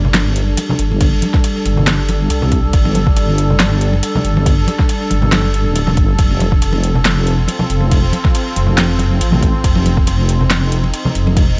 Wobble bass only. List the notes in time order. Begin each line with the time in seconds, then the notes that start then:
Already playing: G1
0.79 G1
1.65 G1
2.30 C2
2.74 G1
4.24 G1
5.11 G1
5.66 D1
5.97 G1
6.19 F1
7.70 F1
8.56 F1
9.21 A1
9.64 F1
11.15 F1